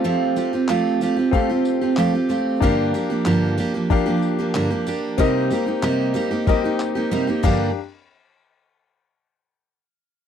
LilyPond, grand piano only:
\new Staff \with { instrumentName = "Grand piano" } { \time 4/4 \key g \minor \tempo 4 = 93 <c' g' a' f''>4 r4 <c' g' a' f''>4. r8 | <d' g' bes' f''>4. r8 <d' g' bes' f''>4. r8 | <c' g' bes' ees''>4. r8 <c' g' bes' ees''>4. <d' g' bes' f''>8 | r1 | }